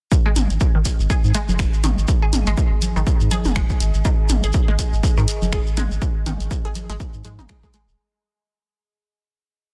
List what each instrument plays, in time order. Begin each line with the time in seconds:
0.12 ambient pad G#4, kick, shekere
0.23 synth arpeggio sound G#3, ambient pad D#5
0.36 analog synth bass G#1, closed hi-hat, mid tom, shekere
0.50 analog synth bass G#1, closed hi-hat, shekere
0.57 ambient pad G#5, shekere
0.61 kick
0.75 analog synth bass G#1, synth arpeggio sound D#3
0.85 kick, closed hi-hat, shekere
0.99 analog synth bass G#1, shekere
1.10 synth arpeggio sound G#4, kick, shekere
1.24 analog synth bass G#2, shekere
1.34 synth arpeggio sound G#3, closed hi-hat, shekere
1.49 analog synth bass F#1, high conga, shekere
1.59 finger snap, kick, shekere
1.73 shekere
1.84 analog synth bass G#1, synth arpeggio sound D#3, closed hi-hat, mid tom, shekere
1.98 analog synth bass G#1, shekere
2.08 kick, shekere
2.22 synth arpeggio sound G#4
2.33 analog synth bass G#1, closed hi-hat, mid tom, shekere
2.47 analog synth bass G#1, synth arpeggio sound G#3, closed hi-hat, shekere
2.57 kick, shekere
2.72 analog synth bass G#1
2.82 closed hi-hat, high conga, shekere
2.96 analog synth bass G#1, synth arpeggio sound D#3, shekere
3.07 kick, shekere
3.20 analog synth bass G#2, shekere
3.31 synth arpeggio sound G#4, closed hi-hat, high conga, shekere
3.45 analog synth bass F#1, mid tom, shekere
3.55 synth arpeggio sound G#3, finger snap, kick, shekere
3.69 kick, shekere
3.80 analog synth bass G#1, closed hi-hat, shekere
3.94 analog synth bass G#1, shekere
4.05 synth arpeggio sound D#3, kick, shekere
4.29 analog synth bass G#1, closed hi-hat, mid tom, shekere
4.43 analog synth bass G#1, synth arpeggio sound G#4, closed hi-hat, shekere
4.53 kick, shekere
4.68 analog synth bass G#1, synth arpeggio sound G#3
4.79 kick, closed hi-hat, shekere
4.93 analog synth bass G#1, shekere
5.03 kick, shekere
5.17 analog synth bass G#2, synth arpeggio sound D#3, shekere
5.28 closed hi-hat, shekere
5.42 analog synth bass F#1, high conga, shekere
5.52 synth arpeggio sound G#4, finger snap, kick, shekere
5.67 shekere
5.77 analog synth bass G#1, synth arpeggio sound G#3, closed hi-hat, mid tom, shekere
5.91 analog synth bass G#1, shekere
6.02 kick, shekere
6.26 analog synth bass G#1, synth arpeggio sound D#3, closed hi-hat, mid tom, shekere
6.40 analog synth bass G#1, closed hi-hat, shekere
6.51 kick, shekere
6.65 analog synth bass G#1, synth arpeggio sound G#4
6.75 closed hi-hat, high conga, shekere
6.90 analog synth bass G#1, synth arpeggio sound G#3, shekere
7.00 kick, shekere
7.14 analog synth bass G#2, shekere
7.25 analog synth bass G#2, synth arpeggio sound G#3, closed hi-hat, high conga, shekere
7.39 analog synth bass G#1, synth arpeggio sound D#4, mid tom, shekere
7.49 synth arpeggio sound G#3, finger snap, kick, closed hi-hat, shekere
7.63 synth arpeggio sound G#3, kick, shekere
7.74 synth arpeggio sound G#3, closed hi-hat, shekere
7.88 analog synth bass D#1, shekere